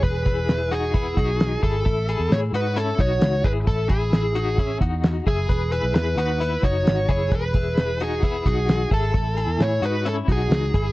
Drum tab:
HH |xxxxxxxx|xxxxxxxx|xxxxxxxx|xxxxxxxx|
SD |--o---o-|--o---o-|--o---o-|--o---o-|
BD |oo--oo-o|o----o-o|oo--oo-o|o----o-o|

HH |xxxxxxxx|xxxxxxxx|
SD |--o---o-|--o---o-|
BD |oo--oo-o|o----o-o|